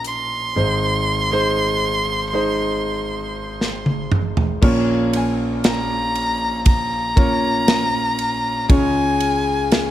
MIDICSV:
0, 0, Header, 1, 4, 480
1, 0, Start_track
1, 0, Key_signature, -5, "minor"
1, 0, Tempo, 1016949
1, 265, Time_signature, 4, 2, 24, 8
1, 4676, End_track
2, 0, Start_track
2, 0, Title_t, "Violin"
2, 0, Program_c, 0, 40
2, 32, Note_on_c, 0, 84, 105
2, 1930, Note_off_c, 0, 84, 0
2, 2432, Note_on_c, 0, 80, 67
2, 2526, Note_off_c, 0, 80, 0
2, 2670, Note_on_c, 0, 82, 97
2, 3129, Note_off_c, 0, 82, 0
2, 3152, Note_on_c, 0, 82, 105
2, 4104, Note_on_c, 0, 80, 110
2, 4111, Note_off_c, 0, 82, 0
2, 4676, Note_off_c, 0, 80, 0
2, 4676, End_track
3, 0, Start_track
3, 0, Title_t, "Grand piano"
3, 0, Program_c, 1, 0
3, 0, Control_c, 1, 64, 127
3, 0, Note_on_c, 1, 34, 56
3, 0, Note_on_c, 1, 46, 61
3, 0, Note_on_c, 1, 53, 69
3, 0, Note_on_c, 1, 61, 59
3, 0, Note_on_c, 1, 70, 79
3, 94, Note_off_c, 1, 53, 0
3, 96, Note_off_c, 1, 61, 0
3, 98, Note_off_c, 1, 70, 0
3, 246, Note_off_c, 1, 34, 0
3, 246, Note_off_c, 1, 46, 0
3, 262, Note_on_c, 1, 56, 62
3, 265, Note_on_c, 1, 32, 55
3, 265, Note_on_c, 1, 44, 57
3, 266, Note_on_c, 1, 63, 61
3, 271, Control_c, 1, 64, 0
3, 271, Note_on_c, 1, 72, 74
3, 347, Control_c, 1, 64, 127
3, 605, Note_off_c, 1, 56, 0
3, 607, Note_off_c, 1, 63, 0
3, 610, Note_off_c, 1, 72, 0
3, 620, Note_on_c, 1, 56, 89
3, 624, Note_on_c, 1, 63, 71
3, 629, Note_on_c, 1, 72, 89
3, 1078, Note_off_c, 1, 56, 0
3, 1081, Note_off_c, 1, 63, 0
3, 1083, Note_off_c, 1, 72, 0
3, 1099, Note_on_c, 1, 56, 80
3, 1104, Note_on_c, 1, 63, 79
3, 1108, Note_on_c, 1, 72, 82
3, 2014, Note_off_c, 1, 56, 0
3, 2017, Note_off_c, 1, 63, 0
3, 2018, Note_off_c, 1, 72, 0
3, 2166, Note_off_c, 1, 32, 0
3, 2166, Note_off_c, 1, 44, 0
3, 2179, Note_on_c, 1, 58, 85
3, 2182, Note_on_c, 1, 61, 79
3, 2183, Note_on_c, 1, 34, 72
3, 2184, Note_on_c, 1, 46, 69
3, 2186, Note_on_c, 1, 65, 83
3, 2188, Note_on_c, 1, 73, 100
3, 2192, Control_c, 1, 64, 0
3, 2276, Control_c, 1, 64, 127
3, 3094, Note_off_c, 1, 58, 0
3, 3095, Note_off_c, 1, 61, 0
3, 3098, Note_off_c, 1, 65, 0
3, 3099, Note_off_c, 1, 73, 0
3, 3379, Note_on_c, 1, 58, 69
3, 3381, Note_on_c, 1, 61, 66
3, 3385, Note_on_c, 1, 65, 66
3, 3387, Note_on_c, 1, 73, 75
3, 4066, Note_off_c, 1, 58, 0
3, 4067, Note_off_c, 1, 61, 0
3, 4069, Note_off_c, 1, 65, 0
3, 4070, Note_off_c, 1, 73, 0
3, 4085, Note_off_c, 1, 34, 0
3, 4085, Note_off_c, 1, 46, 0
3, 4099, Note_on_c, 1, 56, 74
3, 4103, Note_on_c, 1, 61, 63
3, 4105, Note_on_c, 1, 37, 64
3, 4105, Note_on_c, 1, 49, 67
3, 4106, Note_on_c, 1, 65, 65
3, 4108, Note_on_c, 1, 73, 82
3, 4111, Control_c, 1, 64, 0
3, 4191, Control_c, 1, 64, 127
3, 4676, Note_off_c, 1, 37, 0
3, 4676, Note_off_c, 1, 49, 0
3, 4676, Note_off_c, 1, 56, 0
3, 4676, Note_off_c, 1, 61, 0
3, 4676, Note_off_c, 1, 65, 0
3, 4676, Note_off_c, 1, 73, 0
3, 4676, End_track
4, 0, Start_track
4, 0, Title_t, "Drums"
4, 21, Note_on_c, 9, 42, 60
4, 68, Note_off_c, 9, 42, 0
4, 1705, Note_on_c, 9, 38, 53
4, 1753, Note_off_c, 9, 38, 0
4, 1822, Note_on_c, 9, 48, 56
4, 1869, Note_off_c, 9, 48, 0
4, 1943, Note_on_c, 9, 45, 75
4, 1990, Note_off_c, 9, 45, 0
4, 2063, Note_on_c, 9, 43, 82
4, 2110, Note_off_c, 9, 43, 0
4, 2182, Note_on_c, 9, 49, 96
4, 2183, Note_on_c, 9, 36, 109
4, 2229, Note_off_c, 9, 49, 0
4, 2231, Note_off_c, 9, 36, 0
4, 2423, Note_on_c, 9, 51, 64
4, 2470, Note_off_c, 9, 51, 0
4, 2662, Note_on_c, 9, 51, 63
4, 2666, Note_on_c, 9, 38, 114
4, 2709, Note_off_c, 9, 51, 0
4, 2713, Note_off_c, 9, 38, 0
4, 2905, Note_on_c, 9, 51, 50
4, 2952, Note_off_c, 9, 51, 0
4, 3142, Note_on_c, 9, 51, 74
4, 3144, Note_on_c, 9, 36, 87
4, 3189, Note_off_c, 9, 51, 0
4, 3191, Note_off_c, 9, 36, 0
4, 3384, Note_on_c, 9, 36, 89
4, 3386, Note_on_c, 9, 51, 47
4, 3431, Note_off_c, 9, 36, 0
4, 3433, Note_off_c, 9, 51, 0
4, 3624, Note_on_c, 9, 51, 71
4, 3626, Note_on_c, 9, 38, 118
4, 3671, Note_off_c, 9, 51, 0
4, 3673, Note_off_c, 9, 38, 0
4, 3864, Note_on_c, 9, 51, 57
4, 3911, Note_off_c, 9, 51, 0
4, 4104, Note_on_c, 9, 51, 72
4, 4105, Note_on_c, 9, 36, 112
4, 4152, Note_off_c, 9, 36, 0
4, 4152, Note_off_c, 9, 51, 0
4, 4344, Note_on_c, 9, 51, 62
4, 4391, Note_off_c, 9, 51, 0
4, 4586, Note_on_c, 9, 51, 60
4, 4589, Note_on_c, 9, 38, 97
4, 4633, Note_off_c, 9, 51, 0
4, 4637, Note_off_c, 9, 38, 0
4, 4676, End_track
0, 0, End_of_file